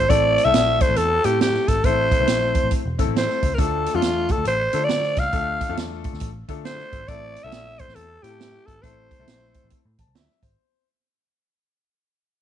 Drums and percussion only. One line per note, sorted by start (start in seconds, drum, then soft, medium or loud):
0.10 kick loud
0.10 closed hi-hat medium
0.38 closed hi-hat medium
0.54 snare loud
0.54 closed hi-hat loud
0.81 kick medium
0.81 closed hi-hat medium
0.96 closed hi-hat medium
1.24 closed hi-hat medium
1.41 snare loud
1.41 closed hi-hat medium
1.54 snare soft
1.68 kick medium
1.68 closed hi-hat medium
1.84 kick loud
1.84 closed hi-hat medium
2.12 kick loud
2.12 closed hi-hat medium
2.27 snare loud
2.27 closed hi-hat loud
2.55 kick loud
2.55 closed hi-hat medium
2.71 kick medium
2.71 closed hi-hat medium
2.99 kick medium
2.99 closed hi-hat medium
3.16 snare loud
3.16 closed hi-hat medium
3.29 snare soft
3.43 kick medium
3.43 closed hi-hat medium
3.58 kick loud
3.58 closed hi-hat medium
3.86 closed hi-hat medium
4.02 snare loud
4.02 closed hi-hat medium
4.29 kick medium
4.29 closed hi-hat medium
4.45 closed hi-hat medium
4.73 closed hi-hat medium
4.89 snare loud
4.89 closed hi-hat medium
5.02 snare soft
5.16 kick medium
5.16 snare soft
5.16 closed hi-hat medium
5.33 kick loud
5.33 closed hi-hat medium
5.61 kick medium
5.61 closed hi-hat medium
5.77 snare loud
5.77 closed hi-hat loud
6.04 kick loud
6.04 closed hi-hat medium
6.13 snare soft
6.20 kick medium
6.20 closed hi-hat medium
6.48 kick medium
6.48 closed hi-hat medium
6.65 snare loud
6.65 closed hi-hat medium
6.78 snare soft
6.93 kick medium
6.93 closed hi-hat medium
7.08 kick loud
7.08 closed hi-hat medium
7.36 closed hi-hat medium
7.52 snare loud
7.52 closed hi-hat loud
7.79 kick loud
7.79 closed hi-hat medium
7.89 snare soft
7.96 closed hi-hat medium
8.24 closed hi-hat medium
8.41 snare loud
8.41 closed hi-hat medium
8.68 kick medium
8.68 closed hi-hat medium
8.84 kick loud
8.84 closed hi-hat medium
9.11 kick loud
9.11 closed hi-hat medium
9.28 snare loud
9.28 closed hi-hat loud
9.54 kick medium
9.54 closed hi-hat medium
9.70 kick medium
9.70 closed hi-hat medium
9.99 kick medium
9.99 closed hi-hat medium
10.15 snare loud
10.15 closed hi-hat medium
10.43 kick medium
10.43 closed hi-hat medium